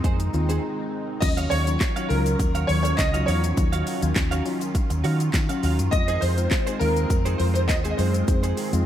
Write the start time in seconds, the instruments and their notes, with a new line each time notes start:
Already playing: analog synth pad D#3 G#3 C4 D#4, synth pluck G#3 C4 D#4 F4, grand piano D#5
0.04 fingered electric bass F2, clean electric guitar D#4 G#4 C5, kick, closed hi-hat, shaker
0.20 muted clean electric guitar stroke, closed hi-hat, shaker
0.34 fingered electric bass D#2, synth pluck G#3 C4 D#4 F4, muted clean electric guitar stroke, shaker
0.49 synth pluck G#3 C4 D#4 G#4, clean electric guitar D#4 G#4 C5, closed hi-hat, shaker
1.21 fingered electric bass D#2, analog synth pad D#3 F#3 C#4 F4, synth pluck F#3 C#4 D#4 F4, grand piano D#5, muted clean electric guitar stroke, kick, closed hi-hat, crash, shaker
1.37 clean electric guitar F#4 C#5 F5, closed hi-hat, shaker
1.50 fingered electric bass D#2, clean electric guitar F#4 C#5 F5, grand piano C#5, open hi-hat, shaker
1.67 synth pluck F#3 C#4 D#4 F4, muted clean electric guitar stroke, closed hi-hat, shaker
1.81 muted clean electric guitar stroke, kick, snare, clap, closed hi-hat, shaker
1.96 synth pluck F#3 C#4 D#4 F4, clean electric guitar F#4 C#5 F5, closed hi-hat, shaker
2.09 fingered electric bass C#2, synth pluck F#3 C#4 D#4 F4, grand piano A#4, muted clean electric guitar stroke, open hi-hat, shaker
2.25 muted clean electric guitar stroke, closed hi-hat, shaker
2.39 fingered electric bass D#2, muted clean electric guitar stroke, kick, closed hi-hat, shaker
2.55 clean electric guitar F#4 C#5 F5, closed hi-hat, shaker
2.67 fingered electric bass D#2, grand piano C#5, muted clean electric guitar stroke, open hi-hat, shaker
2.83 grand piano C#5, muted clean electric guitar stroke, closed hi-hat, shaker
2.97 grand piano D#5, muted clean electric guitar stroke, kick, snare, clap, closed hi-hat, shaker
3.14 synth pluck F#3 C#4 D#4 F4, clean electric guitar F#4 C#5 F5, closed hi-hat, shaker
3.26 fingered electric bass E2, clean electric guitar F#4 C#5 F5, grand piano C#5, open hi-hat, shaker
3.43 muted clean electric guitar stroke, closed hi-hat, shaker
3.57 fingered electric bass D#2, synth pluck F#3 C#4 D#4 F4, muted clean electric guitar stroke, kick, closed hi-hat, shaker
3.73 clean electric guitar F#4 C#5 F5, closed hi-hat, shaker
3.86 clean electric guitar F#4 C#5 F5, open hi-hat, shaker
4.02 fingered electric bass D#2, synth pluck F#3 C#4 D#4 F4, closed hi-hat, shaker
4.16 fingered electric bass D#2, muted clean electric guitar stroke, kick, snare, clap, closed hi-hat, shaker
4.31 synth pluck F#3 C#4 D#4 F4, clean electric guitar F#4 C#5 F5, closed hi-hat, shaker
4.45 synth pluck F#3 C#4 D#4 F4, muted clean electric guitar stroke, open hi-hat, shaker
4.61 muted clean electric guitar stroke, closed hi-hat, shaker
4.75 muted clean electric guitar stroke, kick, closed hi-hat, shaker
4.90 fingered electric bass D#2, muted clean electric guitar stroke, closed hi-hat, shaker
5.04 fingered electric bass D#3, clean electric guitar F#4 C#5 F5, open hi-hat, shaker
5.20 muted clean electric guitar stroke, closed hi-hat, shaker
5.33 fingered electric bass D#3, muted clean electric guitar stroke, kick, snare, clap, closed hi-hat, shaker
5.49 synth pluck F#3 C#4 D#4 F4, clean electric guitar F#4 C#5 F5, closed hi-hat, shaker
5.63 fingered electric bass D#2, clean electric guitar F#4 C#5 F5, open hi-hat, shaker
5.79 fingered electric bass F#2, muted clean electric guitar stroke, closed hi-hat, shaker
5.91 fingered electric bass F2, synth pluck G#3 C4 F4, analog synth pad G#3 C4, grand piano D#5, muted clean electric guitar stroke, kick, closed hi-hat, shaker
6.08 clean electric guitar D#4 G#4 C5, closed hi-hat, shaker
6.21 fingered electric bass F2, clean electric guitar D#4 G#4 C5, grand piano C5, open hi-hat, shaker
6.37 synth pluck G#3 C4 D#4 F4, muted clean electric guitar stroke, closed hi-hat, shaker
6.51 muted clean electric guitar stroke, kick, snare, clap, closed hi-hat, shaker
6.67 synth pluck G#3 C4 D#4 F4, clean electric guitar D#4 G#4 C5, closed hi-hat, shaker
6.79 fingered electric bass D#2, synth pluck G#3 C4 D#4 F4, grand piano A#4, open hi-hat, shaker
6.96 muted clean electric guitar stroke, closed hi-hat, shaker
7.10 fingered electric bass F2, muted clean electric guitar stroke, kick, closed hi-hat, shaker
7.25 clean electric guitar D#4 G#4 C5, closed hi-hat, shaker
7.38 fingered electric bass F2, grand piano C5, muted clean electric guitar stroke, open hi-hat, shaker
7.54 grand piano C5, muted clean electric guitar stroke, closed hi-hat, shaker
7.68 fingered electric bass D#2, grand piano D#5, muted clean electric guitar stroke, kick, snare, clap, closed hi-hat, shaker
7.84 synth pluck G#3 C4 D#4 G#4, clean electric guitar D#4 G#4 C5, closed hi-hat, shaker
7.91 grand piano D#5
7.97 fingered electric bass F#2, clean electric guitar D#4 G#4 C5, grand piano C5, open hi-hat, shaker
8.14 muted clean electric guitar stroke, closed hi-hat, shaker
8.28 fingered electric bass F2, synth pluck G#3 C4 D#4 G#4, muted clean electric guitar stroke, kick, closed hi-hat, shaker
8.43 clean electric guitar D#4 G#4 C5, closed hi-hat, shaker
8.57 clean electric guitar D#4 G#4 C5, open hi-hat, shaker
8.73 fingered electric bass F2, synth pluck G#3 C4 D#4 F4, muted clean electric guitar stroke, closed hi-hat, shaker